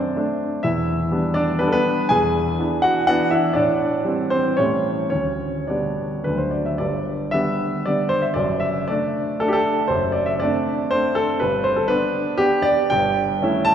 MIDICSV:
0, 0, Header, 1, 2, 480
1, 0, Start_track
1, 0, Key_signature, 1, "major"
1, 0, Tempo, 472813
1, 645, Time_signature, 3, 2, 24, 8
1, 1131, Tempo, 491400
1, 4011, Tempo, 530035
1, 4971, Tempo, 578592
1, 5931, Tempo, 529568
1, 7371, Tempo, 515907
1, 8811, Tempo, 496689
1, 11691, Tempo, 510638
1, 12960, End_track
2, 0, Start_track
2, 0, Title_t, "Grand piano"
2, 0, Program_c, 0, 0
2, 0, Control_c, 0, 64, 127
2, 0, Note_on_c, 0, 42, 55
2, 0, Note_on_c, 0, 57, 44
2, 0, Note_on_c, 0, 60, 62
2, 0, Note_on_c, 0, 62, 54
2, 0, Note_on_c, 0, 72, 80
2, 0, Note_on_c, 0, 74, 94
2, 128, Note_off_c, 0, 57, 0
2, 131, Note_off_c, 0, 60, 0
2, 132, Note_off_c, 0, 62, 0
2, 162, Note_off_c, 0, 72, 0
2, 166, Note_on_c, 0, 57, 53
2, 172, Note_on_c, 0, 62, 63
2, 186, Control_c, 0, 64, 0
2, 189, Note_off_c, 0, 74, 0
2, 197, Note_off_c, 0, 42, 0
2, 600, Note_off_c, 0, 57, 0
2, 604, Note_off_c, 0, 62, 0
2, 639, Note_on_c, 0, 76, 83
2, 652, Note_on_c, 0, 40, 53
2, 654, Note_on_c, 0, 64, 64
2, 826, Control_c, 0, 64, 127
2, 1121, Note_off_c, 0, 40, 0
2, 1132, Note_on_c, 0, 55, 55
2, 1134, Note_on_c, 0, 59, 51
2, 1140, Note_on_c, 0, 62, 55
2, 1338, Note_off_c, 0, 64, 0
2, 1350, Note_off_c, 0, 62, 0
2, 1353, Note_on_c, 0, 74, 96
2, 1365, Note_on_c, 0, 62, 79
2, 1370, Note_off_c, 0, 76, 0
2, 1571, Note_off_c, 0, 55, 0
2, 1572, Note_off_c, 0, 59, 0
2, 1589, Note_off_c, 0, 62, 0
2, 1594, Note_on_c, 0, 71, 97
2, 1600, Note_off_c, 0, 74, 0
2, 1609, Note_on_c, 0, 55, 62
2, 1611, Note_on_c, 0, 59, 59
2, 1615, Note_on_c, 0, 62, 65
2, 1624, Control_c, 0, 64, 0
2, 1667, Note_off_c, 0, 71, 0
2, 1681, Note_on_c, 0, 69, 73
2, 1719, Note_off_c, 0, 59, 0
2, 1727, Note_on_c, 0, 71, 107
2, 1734, Note_on_c, 0, 59, 77
2, 1745, Note_off_c, 0, 69, 0
2, 2072, Note_off_c, 0, 55, 0
2, 2075, Note_off_c, 0, 62, 0
2, 2081, Note_off_c, 0, 59, 0
2, 2084, Note_on_c, 0, 80, 96
2, 2096, Note_on_c, 0, 68, 77
2, 2100, Note_on_c, 0, 40, 63
2, 2104, Note_off_c, 0, 71, 0
2, 2287, Control_c, 0, 64, 127
2, 2566, Note_off_c, 0, 40, 0
2, 2573, Note_on_c, 0, 52, 55
2, 2577, Note_on_c, 0, 59, 51
2, 2585, Note_on_c, 0, 62, 53
2, 2600, Control_c, 0, 64, 0
2, 2781, Note_off_c, 0, 68, 0
2, 2798, Note_on_c, 0, 78, 99
2, 2811, Note_on_c, 0, 66, 82
2, 2814, Note_off_c, 0, 80, 0
2, 3020, Note_off_c, 0, 52, 0
2, 3022, Note_off_c, 0, 59, 0
2, 3026, Note_off_c, 0, 62, 0
2, 3028, Note_off_c, 0, 78, 0
2, 3038, Note_off_c, 0, 66, 0
2, 3042, Note_on_c, 0, 78, 112
2, 3051, Note_on_c, 0, 52, 64
2, 3052, Note_on_c, 0, 66, 83
2, 3058, Note_on_c, 0, 62, 65
2, 3061, Note_on_c, 0, 59, 66
2, 3271, Note_on_c, 0, 76, 76
2, 3273, Note_off_c, 0, 66, 0
2, 3283, Note_on_c, 0, 64, 67
2, 3284, Note_off_c, 0, 78, 0
2, 3475, Note_off_c, 0, 52, 0
2, 3479, Note_off_c, 0, 62, 0
2, 3480, Note_off_c, 0, 59, 0
2, 3495, Note_on_c, 0, 74, 88
2, 3499, Note_off_c, 0, 64, 0
2, 3509, Note_off_c, 0, 76, 0
2, 3512, Note_on_c, 0, 62, 78
2, 3520, Note_on_c, 0, 45, 62
2, 3688, Control_c, 0, 64, 127
2, 3990, Note_on_c, 0, 52, 47
2, 3995, Note_off_c, 0, 45, 0
2, 3995, Note_on_c, 0, 55, 49
2, 4006, Note_on_c, 0, 60, 50
2, 4214, Note_off_c, 0, 62, 0
2, 4225, Note_off_c, 0, 60, 0
2, 4229, Note_on_c, 0, 72, 91
2, 4238, Note_on_c, 0, 60, 62
2, 4243, Note_off_c, 0, 74, 0
2, 4449, Note_off_c, 0, 52, 0
2, 4451, Note_off_c, 0, 55, 0
2, 4468, Note_on_c, 0, 73, 84
2, 4469, Note_off_c, 0, 60, 0
2, 4475, Note_on_c, 0, 61, 67
2, 4479, Note_on_c, 0, 52, 43
2, 4482, Note_off_c, 0, 72, 0
2, 4484, Note_on_c, 0, 45, 55
2, 4488, Note_on_c, 0, 55, 38
2, 4489, Note_on_c, 0, 57, 45
2, 4508, Control_c, 0, 64, 0
2, 4679, Control_c, 0, 64, 127
2, 4926, Note_off_c, 0, 52, 0
2, 4927, Note_off_c, 0, 61, 0
2, 4930, Note_off_c, 0, 55, 0
2, 4931, Note_off_c, 0, 57, 0
2, 4937, Note_off_c, 0, 73, 0
2, 4950, Note_on_c, 0, 73, 75
2, 4951, Note_off_c, 0, 45, 0
2, 4960, Note_on_c, 0, 61, 58
2, 4968, Note_on_c, 0, 38, 44
2, 4982, Control_c, 0, 64, 0
2, 5171, Control_c, 0, 64, 127
2, 5407, Note_off_c, 0, 61, 0
2, 5428, Note_on_c, 0, 74, 59
2, 5430, Note_off_c, 0, 38, 0
2, 5435, Note_on_c, 0, 62, 46
2, 5436, Note_off_c, 0, 73, 0
2, 5443, Note_on_c, 0, 50, 39
2, 5449, Note_on_c, 0, 55, 38
2, 5450, Note_on_c, 0, 59, 42
2, 5892, Note_off_c, 0, 62, 0
2, 5896, Note_off_c, 0, 50, 0
2, 5899, Note_off_c, 0, 55, 0
2, 5899, Note_on_c, 0, 71, 76
2, 5900, Note_off_c, 0, 59, 0
2, 5914, Note_on_c, 0, 50, 37
2, 5915, Note_on_c, 0, 38, 48
2, 5922, Note_off_c, 0, 74, 0
2, 5924, Note_on_c, 0, 54, 38
2, 5926, Note_on_c, 0, 57, 33
2, 5940, Control_c, 0, 64, 0
2, 6019, Note_on_c, 0, 72, 60
2, 6039, Note_off_c, 0, 71, 0
2, 6108, Control_c, 0, 64, 127
2, 6138, Note_on_c, 0, 74, 55
2, 6161, Note_off_c, 0, 72, 0
2, 6272, Note_on_c, 0, 76, 54
2, 6279, Note_off_c, 0, 74, 0
2, 6370, Note_off_c, 0, 50, 0
2, 6376, Note_off_c, 0, 54, 0
2, 6377, Note_off_c, 0, 57, 0
2, 6386, Note_on_c, 0, 74, 76
2, 6392, Note_off_c, 0, 38, 0
2, 6402, Note_off_c, 0, 76, 0
2, 6402, Note_on_c, 0, 31, 51
2, 6402, Note_on_c, 0, 43, 47
2, 6425, Control_c, 0, 64, 0
2, 6579, Control_c, 0, 64, 127
2, 6867, Note_on_c, 0, 76, 90
2, 6872, Note_off_c, 0, 31, 0
2, 6873, Note_off_c, 0, 43, 0
2, 6879, Note_off_c, 0, 74, 0
2, 6884, Note_on_c, 0, 50, 51
2, 6887, Note_on_c, 0, 59, 60
2, 6888, Note_on_c, 0, 55, 52
2, 6905, Control_c, 0, 64, 0
2, 7329, Note_off_c, 0, 50, 0
2, 7331, Note_off_c, 0, 55, 0
2, 7331, Note_off_c, 0, 59, 0
2, 7357, Note_off_c, 0, 76, 0
2, 7359, Note_on_c, 0, 74, 88
2, 7371, Note_on_c, 0, 50, 40
2, 7374, Note_on_c, 0, 55, 42
2, 7379, Note_on_c, 0, 59, 51
2, 7577, Note_on_c, 0, 72, 92
2, 7603, Note_off_c, 0, 74, 0
2, 7697, Note_on_c, 0, 76, 70
2, 7710, Note_off_c, 0, 72, 0
2, 7805, Note_off_c, 0, 50, 0
2, 7807, Note_off_c, 0, 55, 0
2, 7807, Note_on_c, 0, 74, 87
2, 7809, Note_off_c, 0, 59, 0
2, 7822, Note_on_c, 0, 30, 46
2, 7825, Note_on_c, 0, 42, 61
2, 7828, Note_off_c, 0, 76, 0
2, 8036, Control_c, 0, 64, 127
2, 8050, Note_on_c, 0, 76, 84
2, 8058, Note_off_c, 0, 74, 0
2, 8296, Note_off_c, 0, 30, 0
2, 8297, Note_off_c, 0, 42, 0
2, 8307, Note_off_c, 0, 76, 0
2, 8309, Note_on_c, 0, 74, 83
2, 8321, Note_on_c, 0, 57, 57
2, 8330, Note_on_c, 0, 62, 57
2, 8333, Control_c, 0, 64, 0
2, 8774, Note_off_c, 0, 57, 0
2, 8779, Note_off_c, 0, 62, 0
2, 8797, Note_on_c, 0, 69, 91
2, 8805, Note_off_c, 0, 74, 0
2, 8810, Note_on_c, 0, 57, 48
2, 8815, Note_on_c, 0, 62, 57
2, 8869, Note_off_c, 0, 69, 0
2, 8875, Note_on_c, 0, 67, 79
2, 8919, Note_on_c, 0, 69, 95
2, 8940, Note_off_c, 0, 67, 0
2, 9241, Note_off_c, 0, 57, 0
2, 9243, Note_off_c, 0, 62, 0
2, 9255, Note_on_c, 0, 72, 83
2, 9269, Note_off_c, 0, 69, 0
2, 9272, Note_on_c, 0, 30, 45
2, 9279, Note_on_c, 0, 42, 58
2, 9464, Control_c, 0, 64, 127
2, 9493, Note_on_c, 0, 74, 79
2, 9504, Note_off_c, 0, 72, 0
2, 9625, Note_on_c, 0, 76, 75
2, 9629, Note_off_c, 0, 74, 0
2, 9751, Note_off_c, 0, 30, 0
2, 9755, Note_off_c, 0, 42, 0
2, 9758, Note_on_c, 0, 74, 93
2, 9762, Note_off_c, 0, 76, 0
2, 9776, Note_on_c, 0, 57, 61
2, 9778, Note_on_c, 0, 60, 52
2, 9779, Control_c, 0, 64, 0
2, 9782, Note_on_c, 0, 62, 63
2, 10231, Note_off_c, 0, 57, 0
2, 10232, Note_off_c, 0, 60, 0
2, 10233, Note_off_c, 0, 62, 0
2, 10250, Note_on_c, 0, 72, 98
2, 10260, Note_off_c, 0, 74, 0
2, 10263, Note_on_c, 0, 60, 48
2, 10265, Note_on_c, 0, 57, 52
2, 10274, Note_on_c, 0, 62, 53
2, 10488, Note_on_c, 0, 69, 97
2, 10494, Note_off_c, 0, 72, 0
2, 10693, Note_off_c, 0, 60, 0
2, 10694, Note_off_c, 0, 57, 0
2, 10698, Note_off_c, 0, 62, 0
2, 10725, Note_on_c, 0, 71, 88
2, 10726, Note_off_c, 0, 69, 0
2, 10742, Note_on_c, 0, 31, 55
2, 10743, Note_on_c, 0, 43, 58
2, 10911, Control_c, 0, 64, 127
2, 10958, Note_on_c, 0, 72, 92
2, 10964, Note_off_c, 0, 71, 0
2, 11080, Note_on_c, 0, 69, 75
2, 11085, Note_off_c, 0, 72, 0
2, 11191, Note_on_c, 0, 71, 101
2, 11203, Note_off_c, 0, 31, 0
2, 11204, Note_off_c, 0, 43, 0
2, 11208, Note_on_c, 0, 59, 60
2, 11209, Note_off_c, 0, 69, 0
2, 11212, Note_on_c, 0, 62, 66
2, 11222, Control_c, 0, 64, 0
2, 11650, Note_off_c, 0, 59, 0
2, 11652, Note_off_c, 0, 62, 0
2, 11671, Note_on_c, 0, 67, 106
2, 11680, Note_off_c, 0, 71, 0
2, 11681, Note_on_c, 0, 59, 56
2, 11686, Note_on_c, 0, 62, 57
2, 11905, Note_on_c, 0, 74, 107
2, 11925, Note_off_c, 0, 67, 0
2, 12142, Note_off_c, 0, 59, 0
2, 12145, Note_off_c, 0, 62, 0
2, 12163, Note_on_c, 0, 79, 104
2, 12170, Note_off_c, 0, 74, 0
2, 12178, Note_on_c, 0, 31, 54
2, 12180, Note_on_c, 0, 43, 67
2, 12382, Control_c, 0, 64, 127
2, 12642, Note_off_c, 0, 31, 0
2, 12643, Note_off_c, 0, 43, 0
2, 12656, Note_on_c, 0, 57, 60
2, 12656, Note_on_c, 0, 61, 68
2, 12668, Note_on_c, 0, 64, 72
2, 12866, Note_on_c, 0, 81, 125
2, 12885, Note_off_c, 0, 79, 0
2, 12960, Note_off_c, 0, 57, 0
2, 12960, Note_off_c, 0, 61, 0
2, 12960, Note_off_c, 0, 64, 0
2, 12960, Note_off_c, 0, 81, 0
2, 12960, End_track
0, 0, End_of_file